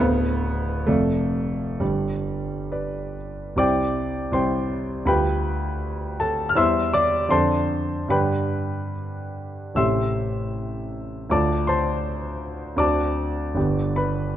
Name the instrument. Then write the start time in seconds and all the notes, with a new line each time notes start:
grand piano
0.00 D1 D2 B3 A4 C5 F5
0.86 F1 F2 A3 A4 D5 F5
1.80 G1 G2 G3
2.72 B4 D5
3.56 C2 G3 E4 C5 D5 G5 D6
4.32 C2 G3 E4 C5 G5 C6
5.05 D2 G3 F4 G4 B4 G5 B5
6.20 A4 A5
6.49 F6
6.55 E2 G3 E4 C5 E5 C6 E6
6.93 D5 D6
7.29 F2 D3 D4 A4 C5 A5 C6
8.09 G2 D3 D4 G4 B4 G5 B5
9.75 A1 C3 A3 G4 E5 C6 E6
11.30 D2 D3 A3 F4 D5 A5 D6
11.67 C5 A5 C6
12.76 D2 D3 C4 F#4 D5 A5 D6
13.55 G1 D3 B3 G4
13.96 B4 B5